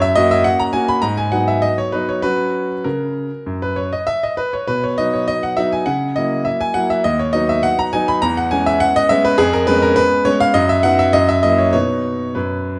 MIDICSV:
0, 0, Header, 1, 2, 480
1, 0, Start_track
1, 0, Key_signature, 5, "major"
1, 0, Tempo, 586510
1, 1334, Tempo, 612245
1, 1811, Time_signature, 4, 2, 24, 8
1, 3734, Tempo, 585938
1, 9014, Tempo, 613497
1, 10311, End_track
2, 0, Start_track
2, 0, Title_t, "Grand piano"
2, 0, Program_c, 0, 0
2, 0, Note_on_c, 0, 42, 95
2, 13, Note_on_c, 0, 76, 114
2, 58, Control_c, 0, 64, 127
2, 127, Note_off_c, 0, 42, 0
2, 127, Note_on_c, 0, 75, 127
2, 133, Note_off_c, 0, 76, 0
2, 134, Note_on_c, 0, 58, 66
2, 137, Note_on_c, 0, 61, 70
2, 141, Note_on_c, 0, 66, 78
2, 249, Note_off_c, 0, 75, 0
2, 255, Note_on_c, 0, 76, 115
2, 362, Note_on_c, 0, 78, 113
2, 373, Note_off_c, 0, 76, 0
2, 378, Control_c, 0, 64, 0
2, 485, Note_off_c, 0, 78, 0
2, 487, Note_on_c, 0, 82, 111
2, 576, Note_off_c, 0, 58, 0
2, 577, Note_off_c, 0, 61, 0
2, 580, Note_off_c, 0, 66, 0
2, 596, Note_on_c, 0, 80, 117
2, 604, Note_on_c, 0, 58, 65
2, 607, Note_off_c, 0, 82, 0
2, 607, Note_on_c, 0, 61, 64
2, 611, Note_on_c, 0, 66, 72
2, 721, Note_off_c, 0, 80, 0
2, 723, Note_on_c, 0, 83, 118
2, 820, Note_off_c, 0, 58, 0
2, 822, Note_off_c, 0, 61, 0
2, 824, Note_off_c, 0, 66, 0
2, 832, Note_on_c, 0, 82, 114
2, 839, Note_on_c, 0, 44, 85
2, 844, Note_off_c, 0, 83, 0
2, 960, Note_off_c, 0, 82, 0
2, 961, Note_on_c, 0, 80, 108
2, 1003, Control_c, 0, 64, 127
2, 1077, Note_off_c, 0, 44, 0
2, 1078, Note_on_c, 0, 78, 101
2, 1084, Note_on_c, 0, 54, 53
2, 1085, Note_off_c, 0, 80, 0
2, 1089, Note_on_c, 0, 59, 53
2, 1091, Note_on_c, 0, 63, 61
2, 1206, Note_off_c, 0, 78, 0
2, 1209, Note_on_c, 0, 76, 97
2, 1325, Note_on_c, 0, 75, 106
2, 1333, Note_off_c, 0, 76, 0
2, 1345, Control_c, 0, 64, 0
2, 1448, Note_off_c, 0, 75, 0
2, 1452, Note_on_c, 0, 73, 98
2, 1538, Note_off_c, 0, 54, 0
2, 1541, Note_off_c, 0, 59, 0
2, 1542, Note_off_c, 0, 63, 0
2, 1564, Note_on_c, 0, 71, 91
2, 1570, Note_on_c, 0, 54, 60
2, 1571, Note_off_c, 0, 73, 0
2, 1574, Note_on_c, 0, 59, 57
2, 1576, Note_on_c, 0, 63, 62
2, 1687, Note_off_c, 0, 71, 0
2, 1692, Note_on_c, 0, 73, 88
2, 1786, Note_off_c, 0, 54, 0
2, 1788, Note_off_c, 0, 59, 0
2, 1789, Note_off_c, 0, 63, 0
2, 1800, Note_on_c, 0, 71, 108
2, 1808, Note_on_c, 0, 66, 57
2, 1809, Note_on_c, 0, 54, 72
2, 1809, Note_on_c, 0, 61, 59
2, 1812, Note_off_c, 0, 73, 0
2, 1982, Control_c, 0, 64, 127
2, 2149, Note_off_c, 0, 54, 0
2, 2196, Note_off_c, 0, 66, 0
2, 2197, Note_off_c, 0, 61, 0
2, 2286, Note_on_c, 0, 70, 84
2, 2289, Note_off_c, 0, 71, 0
2, 2293, Note_on_c, 0, 49, 68
2, 2305, Control_c, 0, 64, 0
2, 2631, Note_off_c, 0, 49, 0
2, 2772, Note_on_c, 0, 42, 66
2, 2892, Note_off_c, 0, 70, 0
2, 2897, Note_on_c, 0, 71, 88
2, 3006, Note_on_c, 0, 73, 86
2, 3017, Note_off_c, 0, 71, 0
2, 3110, Note_off_c, 0, 42, 0
2, 3131, Note_off_c, 0, 73, 0
2, 3134, Note_on_c, 0, 75, 89
2, 3244, Note_on_c, 0, 76, 107
2, 3256, Note_off_c, 0, 75, 0
2, 3371, Note_off_c, 0, 76, 0
2, 3375, Note_on_c, 0, 75, 92
2, 3484, Note_on_c, 0, 71, 98
2, 3496, Note_off_c, 0, 75, 0
2, 3609, Note_off_c, 0, 71, 0
2, 3609, Note_on_c, 0, 73, 89
2, 3721, Note_on_c, 0, 71, 101
2, 3726, Note_on_c, 0, 47, 75
2, 3730, Note_off_c, 0, 73, 0
2, 3849, Note_off_c, 0, 71, 0
2, 3853, Note_on_c, 0, 73, 85
2, 3877, Control_c, 0, 64, 127
2, 3966, Note_off_c, 0, 47, 0
2, 3969, Note_on_c, 0, 75, 105
2, 3976, Note_off_c, 0, 73, 0
2, 3978, Note_on_c, 0, 54, 56
2, 3981, Note_on_c, 0, 59, 59
2, 3984, Note_on_c, 0, 63, 60
2, 4094, Note_off_c, 0, 75, 0
2, 4096, Note_on_c, 0, 73, 87
2, 4213, Note_on_c, 0, 75, 108
2, 4218, Note_off_c, 0, 73, 0
2, 4228, Control_c, 0, 64, 0
2, 4337, Note_off_c, 0, 75, 0
2, 4340, Note_on_c, 0, 78, 97
2, 4429, Note_off_c, 0, 54, 0
2, 4430, Note_off_c, 0, 59, 0
2, 4432, Note_off_c, 0, 63, 0
2, 4451, Note_on_c, 0, 76, 105
2, 4459, Note_on_c, 0, 54, 61
2, 4461, Note_off_c, 0, 78, 0
2, 4462, Note_on_c, 0, 59, 62
2, 4467, Note_on_c, 0, 63, 62
2, 4577, Note_off_c, 0, 76, 0
2, 4581, Note_on_c, 0, 80, 101
2, 4677, Note_off_c, 0, 54, 0
2, 4679, Note_off_c, 0, 59, 0
2, 4682, Note_off_c, 0, 63, 0
2, 4690, Note_on_c, 0, 78, 99
2, 4698, Note_on_c, 0, 49, 73
2, 4702, Note_off_c, 0, 80, 0
2, 4857, Control_c, 0, 64, 127
2, 4934, Note_off_c, 0, 49, 0
2, 4935, Note_on_c, 0, 75, 94
2, 4936, Note_off_c, 0, 78, 0
2, 4944, Note_on_c, 0, 54, 52
2, 4947, Note_on_c, 0, 58, 53
2, 4950, Note_on_c, 0, 64, 63
2, 5173, Note_on_c, 0, 76, 92
2, 5179, Note_off_c, 0, 75, 0
2, 5195, Control_c, 0, 64, 0
2, 5299, Note_off_c, 0, 76, 0
2, 5302, Note_on_c, 0, 80, 111
2, 5393, Note_off_c, 0, 54, 0
2, 5395, Note_off_c, 0, 58, 0
2, 5396, Note_off_c, 0, 64, 0
2, 5413, Note_on_c, 0, 78, 110
2, 5422, Note_on_c, 0, 54, 61
2, 5424, Note_off_c, 0, 80, 0
2, 5426, Note_on_c, 0, 58, 55
2, 5429, Note_on_c, 0, 64, 64
2, 5540, Note_off_c, 0, 78, 0
2, 5544, Note_on_c, 0, 76, 97
2, 5642, Note_off_c, 0, 54, 0
2, 5644, Note_off_c, 0, 58, 0
2, 5646, Note_off_c, 0, 64, 0
2, 5660, Note_on_c, 0, 75, 108
2, 5666, Note_on_c, 0, 39, 78
2, 5667, Note_off_c, 0, 76, 0
2, 5784, Note_on_c, 0, 73, 92
2, 5785, Note_off_c, 0, 75, 0
2, 5849, Control_c, 0, 64, 127
2, 5894, Note_on_c, 0, 75, 111
2, 5902, Note_off_c, 0, 39, 0
2, 5903, Note_on_c, 0, 54, 61
2, 5906, Note_on_c, 0, 59, 59
2, 5908, Note_off_c, 0, 73, 0
2, 5910, Note_on_c, 0, 63, 67
2, 6023, Note_off_c, 0, 75, 0
2, 6028, Note_on_c, 0, 76, 104
2, 6141, Note_on_c, 0, 78, 118
2, 6151, Note_off_c, 0, 76, 0
2, 6161, Control_c, 0, 64, 0
2, 6267, Note_off_c, 0, 78, 0
2, 6271, Note_on_c, 0, 82, 112
2, 6356, Note_off_c, 0, 54, 0
2, 6358, Note_off_c, 0, 59, 0
2, 6360, Note_off_c, 0, 63, 0
2, 6385, Note_on_c, 0, 80, 120
2, 6392, Note_off_c, 0, 82, 0
2, 6392, Note_on_c, 0, 54, 67
2, 6395, Note_on_c, 0, 59, 65
2, 6400, Note_on_c, 0, 63, 74
2, 6509, Note_off_c, 0, 80, 0
2, 6511, Note_on_c, 0, 83, 121
2, 6608, Note_off_c, 0, 54, 0
2, 6610, Note_off_c, 0, 59, 0
2, 6612, Note_off_c, 0, 63, 0
2, 6623, Note_on_c, 0, 82, 124
2, 6631, Note_off_c, 0, 83, 0
2, 6631, Note_on_c, 0, 40, 95
2, 6747, Note_off_c, 0, 82, 0
2, 6751, Note_on_c, 0, 78, 106
2, 6807, Control_c, 0, 64, 127
2, 6861, Note_on_c, 0, 80, 120
2, 6863, Note_off_c, 0, 40, 0
2, 6869, Note_on_c, 0, 56, 63
2, 6870, Note_off_c, 0, 78, 0
2, 6871, Note_on_c, 0, 59, 64
2, 6875, Note_on_c, 0, 61, 74
2, 6985, Note_off_c, 0, 80, 0
2, 6989, Note_on_c, 0, 76, 115
2, 7102, Note_on_c, 0, 78, 127
2, 7108, Note_off_c, 0, 76, 0
2, 7114, Control_c, 0, 64, 0
2, 7223, Note_off_c, 0, 78, 0
2, 7232, Note_on_c, 0, 75, 127
2, 7311, Note_off_c, 0, 56, 0
2, 7312, Note_off_c, 0, 59, 0
2, 7314, Note_off_c, 0, 61, 0
2, 7339, Note_on_c, 0, 76, 127
2, 7347, Note_off_c, 0, 75, 0
2, 7348, Note_on_c, 0, 56, 74
2, 7349, Note_on_c, 0, 59, 73
2, 7353, Note_on_c, 0, 61, 81
2, 7460, Note_off_c, 0, 76, 0
2, 7465, Note_on_c, 0, 71, 116
2, 7559, Note_off_c, 0, 56, 0
2, 7559, Note_off_c, 0, 59, 0
2, 7562, Note_off_c, 0, 61, 0
2, 7574, Note_on_c, 0, 68, 127
2, 7580, Note_on_c, 0, 41, 104
2, 7582, Note_off_c, 0, 71, 0
2, 7695, Note_off_c, 0, 68, 0
2, 7700, Note_on_c, 0, 70, 116
2, 7716, Control_c, 0, 64, 127
2, 7809, Note_off_c, 0, 41, 0
2, 7812, Note_on_c, 0, 71, 121
2, 7817, Note_off_c, 0, 70, 0
2, 7820, Note_on_c, 0, 56, 76
2, 7822, Note_on_c, 0, 59, 80
2, 7826, Note_on_c, 0, 61, 84
2, 7932, Note_off_c, 0, 71, 0
2, 7938, Note_on_c, 0, 70, 113
2, 8049, Note_on_c, 0, 71, 127
2, 8055, Note_off_c, 0, 70, 0
2, 8064, Control_c, 0, 64, 0
2, 8261, Note_off_c, 0, 56, 0
2, 8262, Note_off_c, 0, 59, 0
2, 8264, Note_off_c, 0, 61, 0
2, 8287, Note_on_c, 0, 73, 127
2, 8290, Note_off_c, 0, 71, 0
2, 8293, Note_on_c, 0, 56, 77
2, 8297, Note_on_c, 0, 59, 79
2, 8300, Note_on_c, 0, 61, 89
2, 8409, Note_off_c, 0, 73, 0
2, 8414, Note_on_c, 0, 77, 127
2, 8507, Note_off_c, 0, 56, 0
2, 8509, Note_off_c, 0, 59, 0
2, 8511, Note_off_c, 0, 61, 0
2, 8524, Note_on_c, 0, 75, 127
2, 8530, Note_on_c, 0, 42, 99
2, 8532, Note_off_c, 0, 77, 0
2, 8647, Note_off_c, 0, 75, 0
2, 8650, Note_on_c, 0, 76, 114
2, 8672, Control_c, 0, 64, 127
2, 8763, Note_off_c, 0, 42, 0
2, 8764, Note_on_c, 0, 78, 123
2, 8769, Note_on_c, 0, 54, 67
2, 8770, Note_off_c, 0, 76, 0
2, 8774, Note_on_c, 0, 59, 66
2, 8778, Note_on_c, 0, 63, 69
2, 8888, Note_off_c, 0, 78, 0
2, 8894, Note_on_c, 0, 76, 113
2, 8988, Note_off_c, 0, 54, 0
2, 8990, Note_off_c, 0, 59, 0
2, 8993, Note_off_c, 0, 63, 0
2, 9009, Note_on_c, 0, 75, 123
2, 9014, Note_off_c, 0, 76, 0
2, 9017, Note_on_c, 0, 42, 88
2, 9023, Control_c, 0, 64, 0
2, 9128, Note_off_c, 0, 75, 0
2, 9131, Note_on_c, 0, 76, 110
2, 9160, Control_c, 0, 64, 127
2, 9242, Note_on_c, 0, 75, 109
2, 9243, Note_off_c, 0, 42, 0
2, 9249, Note_off_c, 0, 76, 0
2, 9251, Note_on_c, 0, 54, 59
2, 9252, Note_on_c, 0, 58, 63
2, 9254, Note_on_c, 0, 64, 66
2, 9364, Note_off_c, 0, 75, 0
2, 9364, Note_on_c, 0, 73, 90
2, 9464, Note_off_c, 0, 54, 0
2, 9465, Note_off_c, 0, 58, 0
2, 9465, Note_off_c, 0, 73, 0
2, 9466, Note_off_c, 0, 64, 0
2, 9477, Note_on_c, 0, 73, 112
2, 9486, Note_on_c, 0, 47, 72
2, 9488, Note_on_c, 0, 59, 62
2, 9488, Note_on_c, 0, 63, 60
2, 9497, Control_c, 0, 64, 0
2, 9671, Control_c, 0, 64, 127
2, 9823, Note_off_c, 0, 47, 0
2, 9873, Note_off_c, 0, 59, 0
2, 9873, Note_off_c, 0, 63, 0
2, 9962, Note_on_c, 0, 71, 77
2, 9964, Note_off_c, 0, 73, 0
2, 9970, Note_on_c, 0, 42, 68
2, 9975, Control_c, 0, 64, 0
2, 10310, Note_off_c, 0, 42, 0
2, 10311, Note_off_c, 0, 71, 0
2, 10311, End_track
0, 0, End_of_file